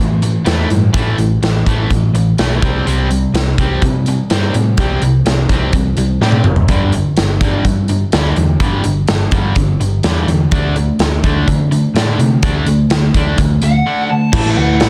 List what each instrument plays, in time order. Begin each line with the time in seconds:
0.00 overdriven electric guitar A2 E3, picked electric bass A2
0.22 overdriven electric guitar A2 E3, closed hi-hat
0.45 picked electric bass E2, overdriven electric guitar A2 E3 A3, snare, closed hi-hat
0.69 picked electric bass G2, overdriven electric guitar A2 E3, closed hi-hat
0.94 picked electric bass A1, overdriven electric guitar A2 E3 A3, kick, closed hi-hat
1.18 picked electric bass A1, overdriven electric guitar A2 E3, closed hi-hat
1.42 picked electric bass A1, overdriven electric guitar A2 E3, snare, closed hi-hat
1.66 picked electric bass A1, overdriven electric guitar A2 E3 A3, kick, closed hi-hat
1.90 picked electric bass A1, overdriven electric guitar A2 E3, kick, closed hi-hat
2.14 picked electric bass A1, overdriven electric guitar A2 E3, closed hi-hat
2.38 picked electric bass B1, overdriven electric guitar A2 E3 A3, snare, closed hi-hat
2.62 picked electric bass C2, overdriven electric guitar C3 G3 C4, kick, closed hi-hat
2.86 picked electric bass C2, overdriven electric guitar C3 G3 C4, closed hi-hat
3.10 overdriven electric guitar C3 G3, closed hi-hat
3.34 picked electric bass C2, overdriven electric guitar C3 G3, snare, closed hi-hat
3.58 picked electric bass C2, overdriven electric guitar C3 G3 C4, kick, closed hi-hat
3.82 picked electric bass C3, overdriven electric guitar C3 G3, kick, closed hi-hat
4.06 overdriven electric guitar C3 G3, closed hi-hat
4.30 picked electric bass G2, overdriven electric guitar C3 G3 C4, snare, closed hi-hat
4.54 picked electric bass A2, overdriven electric guitar C3 G3, closed hi-hat
4.77 picked electric bass C2, overdriven electric guitar C3 G3 C4, kick, closed hi-hat
5.01 picked electric bass C2, overdriven electric guitar C3 G3, closed hi-hat
5.25 picked electric bass C2, overdriven electric guitar C3 G3, snare, closed hi-hat
5.49 picked electric bass C2, overdriven electric guitar C3 G3 C4, kick, closed hi-hat
5.73 picked electric bass C2, overdriven electric guitar C3 G3, kick, closed hi-hat
5.97 picked electric bass C2, overdriven electric guitar C3 G3, closed hi-hat
6.21 picked electric bass A2, overdriven electric guitar C3 G3 C4, snare
6.32 high tom
6.44 picked electric bass F#1, overdriven electric guitar C3 G3, mid tom
6.56 floor tom
6.68 picked electric bass G1, overdriven electric guitar G2 D3 G3, kick, closed hi-hat
6.92 overdriven electric guitar G2 D3, closed hi-hat
7.17 picked electric bass G1, overdriven electric guitar G2 D3, snare, closed hi-hat
7.41 picked electric bass G1, overdriven electric guitar G2 D3 G3, kick, closed hi-hat
7.65 picked electric bass G2, overdriven electric guitar G2 D3, kick, closed hi-hat
7.88 overdriven electric guitar G2 D3, closed hi-hat
8.12 picked electric bass D2, overdriven electric guitar G2 D3 G3, snare, closed hi-hat
8.36 picked electric bass E2, overdriven electric guitar G2 D3, closed hi-hat
8.60 picked electric bass G1, overdriven electric guitar G2 D3 G3, kick, closed hi-hat
8.84 picked electric bass G1, overdriven electric guitar G2 D3, closed hi-hat
9.08 picked electric bass G1, overdriven electric guitar G2 D3, snare, closed hi-hat
9.31 picked electric bass G1, overdriven electric guitar G2 D3 G3, kick, closed hi-hat
9.55 picked electric bass G1, overdriven electric guitar G2 D3, kick, closed hi-hat
9.80 picked electric bass G1, overdriven electric guitar G2 D3, closed hi-hat
10.03 picked electric bass E2, overdriven electric guitar G2 D3 G3, snare, closed hi-hat
10.27 picked electric bass E2, overdriven electric guitar G2 D3, closed hi-hat
10.51 picked electric bass D2, overdriven electric guitar D3 A3 D4, kick, closed hi-hat
10.76 overdriven electric guitar D3 A3, closed hi-hat
10.99 picked electric bass D2, overdriven electric guitar D3 A3, snare, closed hi-hat
11.24 picked electric bass D2, overdriven electric guitar D3 A3 D4, kick, closed hi-hat
11.48 overdriven electric guitar D3 A3, picked electric bass D3, kick, closed hi-hat
11.72 overdriven electric guitar D3 A3, closed hi-hat
11.94 picked electric bass A2, overdriven electric guitar D3 A3 D4, snare, closed hi-hat
12.19 picked electric bass C3, overdriven electric guitar D3 A3, closed hi-hat
12.43 picked electric bass D2, overdriven electric guitar D3 A3 D4, kick, closed hi-hat
12.66 picked electric bass D2, overdriven electric guitar D3 A3, closed hi-hat
12.90 picked electric bass D2, overdriven electric guitar D3 A3, snare, closed hi-hat
13.14 picked electric bass D2, overdriven electric guitar D3 A3 D4, kick, closed hi-hat
13.38 picked electric bass D2, overdriven electric guitar D3 A3, kick, closed hi-hat
13.61 picked electric bass D2, overdriven electric guitar D3 A3, lead electric guitar F#5, closed hi-hat
13.86 overdriven electric guitar D3 A3 D4
14.10 overdriven electric guitar D3 A3, lead electric guitar A5
14.32 picked electric bass A1, overdriven electric guitar A2 E3 A3, analog synth pad A3 E4 B4, kick, crash
14.50 lead electric guitar E5
14.57 picked electric bass D2, lead electric guitar F#5
14.80 picked electric bass A1, snare, crash